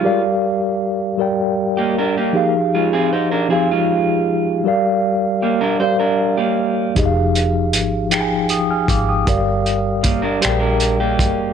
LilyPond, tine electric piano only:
\new Staff \with { instrumentName = "Tine electric piano" } { \time 6/8 \key g \phrygian \tempo 4. = 52 << { r2. | r2. | r2. | r2 <g'' ees'''>16 <aes'' f'''>16 <f'' d'''>16 <g'' ees'''>16~ |
<g'' ees'''>16 r2 r8. | } \\ { <g g' bes' d'' f''>4. <g g' bes' d'' g''>4. | <f ees' g' aes' f''>4. <f ees' g' aes' f''>4. | <g g' bes' d'' f''>4. <g g' bes' d'' f''>4. | <f ees' g' aes' ees'' f''>4. <f ees' aes' g'' aes''>4. |
<g g' bes' d'' f''>4. <g g' aes' bes' d'' g''>4. | } >> }